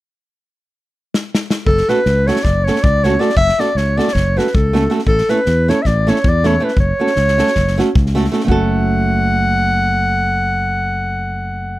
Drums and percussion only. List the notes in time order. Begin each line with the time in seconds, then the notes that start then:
1.14 snare
1.35 snare
1.50 snare
1.66 kick
1.77 snare
1.88 snare
2.06 snare
2.28 snare
2.36 snare
2.45 kick, snare
2.67 snare
2.76 snare
2.84 kick
3.04 snare
3.21 snare
3.29 snare
3.37 kick
3.49 snare
3.60 snare
3.77 snare
3.99 snare
4.08 snare
4.15 kick, snare
4.39 snare
4.47 snare
4.55 kick
4.75 snare
4.90 snare
4.99 snare
5.07 kick
5.18 snare
5.29 snare
5.46 snare
5.69 snare
5.85 kick, snare
6.08 snare
6.16 snare
6.24 kick
6.44 snare
6.68 snare
6.77 kick
7.07 snare
7.16 snare
7.28 snare
7.39 snare
7.47 snare
7.56 kick, snare
7.68 snare
7.79 snare
7.95 kick
8.06 snare
8.16 snare
8.25 snare
8.33 snare
8.40 snare
8.48 kick